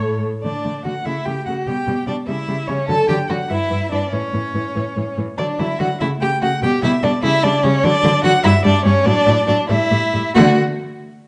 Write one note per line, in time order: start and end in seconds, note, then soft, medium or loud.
0.00 0.21 A2 medium
0.00 0.24 A4 medium
0.00 0.12 C#5 medium
0.00 0.22 C#5 loud
0.43 0.52 D3 soft
0.43 0.52 A3 soft
0.43 0.82 D4 soft
0.43 0.82 D5 medium
0.64 0.73 D3 soft
0.64 0.72 A3 soft
0.85 0.93 D3 soft
0.85 0.93 A3 soft
0.85 0.93 F#4 medium
0.85 1.07 F#5 medium
1.05 1.14 C#3 medium
1.05 1.14 A3 soft
1.05 1.27 E4 medium
1.05 1.27 E5 medium
1.26 1.35 C#3 soft
1.26 1.34 A3 soft
1.26 1.46 G4 medium
1.26 1.45 G5 medium
1.46 1.55 C#3 soft
1.46 1.55 A3 soft
1.46 1.68 F#4 medium
1.46 1.54 F#5 medium
1.66 1.75 B2 medium
1.66 1.75 G3 soft
1.66 2.07 G4 medium
1.66 2.06 G5 medium
1.87 1.95 B2 medium
1.87 1.96 G3 medium
2.07 2.15 B2 medium
2.07 2.15 G3 soft
2.07 2.16 D4 medium
2.07 2.15 D5 medium
2.27 2.36 C#3 medium
2.27 2.36 G3 medium
2.27 2.70 E4 medium
2.27 2.69 E5 medium
2.48 2.56 C#3 medium
2.48 2.56 G3 medium
2.67 2.76 C#3 medium
2.67 2.77 G3 medium
2.67 2.90 C#4 medium
2.67 2.88 C#5 medium
2.88 2.97 D3 medium
2.88 2.97 F#3 medium
2.88 3.08 A4 medium
2.88 3.08 A5 loud
3.09 3.17 D3 medium
3.09 3.17 F#3 medium
3.09 3.17 G4 medium
3.09 3.31 G5 medium
3.29 3.38 D3 medium
3.29 3.38 F#3 medium
3.29 3.38 F#4 medium
3.29 3.52 F#5 medium
3.50 3.59 G2 medium
3.50 3.58 E3 medium
3.50 3.91 E4 medium
3.50 3.94 E5 medium
3.71 3.79 G2 medium
3.71 3.79 E3 medium
3.92 4.00 G2 medium
3.92 4.00 E3 soft
3.92 4.12 D4 medium
3.92 4.14 D5 medium
4.13 4.21 A2 medium
4.13 4.21 E3 medium
4.13 5.16 C#4 medium
4.13 5.18 C#5 medium
4.33 4.41 A2 medium
4.33 4.42 E3 soft
4.54 4.62 A2 medium
4.54 4.63 E3 soft
4.76 4.84 A2 medium
4.76 4.84 E3 medium
4.96 5.04 A2 medium
4.96 5.05 E3 soft
5.18 5.26 A2 medium
5.18 5.26 E3 soft
5.38 5.46 D3 medium
5.38 5.46 F#3 medium
5.38 5.61 D4 medium
5.38 5.46 D5 medium
5.59 5.67 D3 medium
5.59 5.67 F#3 medium
5.59 5.79 E4 medium
5.59 5.81 E5 medium
5.80 5.88 D3 medium
5.80 5.88 F#3 medium
5.80 5.88 F#4 medium
5.80 5.99 F#5 medium
6.00 6.09 C#3 medium
6.00 6.09 A3 medium
6.00 6.09 E4 medium
6.00 6.08 E5 medium
6.21 6.30 C#3 medium
6.21 6.30 A3 medium
6.21 6.30 G4 medium
6.21 6.42 G5 medium
6.42 6.50 C#3 medium
6.42 6.50 A3 medium
6.42 6.50 F#4 medium
6.42 6.62 F#5 medium
6.62 6.70 B2 medium
6.62 6.71 G3 medium
6.62 6.83 G4 medium
6.62 6.71 G5 loud
6.83 6.91 B2 medium
6.83 6.91 G3 medium
6.83 6.91 E4 medium
6.83 7.05 E5 medium
7.03 7.11 B2 medium
7.03 7.12 G3 medium
7.03 7.11 D4 medium
7.03 7.23 D5 medium
7.23 7.31 C#3 medium
7.23 7.32 G3 medium
7.23 7.45 E4 loud
7.23 7.45 E5 loud
7.43 7.52 C#3 medium
7.43 7.53 G3 medium
7.43 7.65 D4 medium
7.43 7.66 D5 loud
7.63 7.72 C#3 medium
7.63 7.72 G3 medium
7.63 7.85 C#4 loud
7.63 7.85 C#5 loud
7.83 7.92 D3 medium
7.83 7.92 F#3 medium
7.83 8.23 D4 loud
7.83 8.23 D5 loud
8.04 8.12 D3 loud
8.04 8.12 F#3 medium
8.24 8.32 D3 medium
8.24 8.32 F#3 medium
8.24 8.32 F#4 loud
8.24 8.44 F#5 loud
8.44 8.52 G2 medium
8.44 8.52 G3 medium
8.44 8.52 E4 loud
8.44 8.64 E5 loud
8.65 8.73 G2 medium
8.65 8.73 G3 medium
8.65 8.85 D4 medium
8.65 8.84 D5 loud
8.85 8.93 G2 medium
8.85 8.93 G3 medium
8.85 9.08 C#4 medium
8.85 9.07 C#5 loud
9.05 9.14 A2 medium
9.05 9.14 F#3 medium
9.05 9.47 D4 loud
9.05 9.48 D5 loud
9.26 9.35 A2 medium
9.26 9.34 F#3 medium
9.47 9.56 A2 medium
9.47 9.55 F#3 medium
9.47 9.69 D4 medium
9.47 9.56 D5 loud
9.69 9.78 A2 medium
9.69 9.77 G3 medium
9.69 10.34 E4 medium
9.69 10.33 E5 loud
9.91 9.99 A2 medium
9.91 9.99 G3 medium
10.13 10.22 A2 medium
10.13 10.21 G3 medium
10.34 10.59 D3 medium
10.34 10.59 A3 medium
10.34 10.58 F#4 medium
10.34 10.59 F#5 loud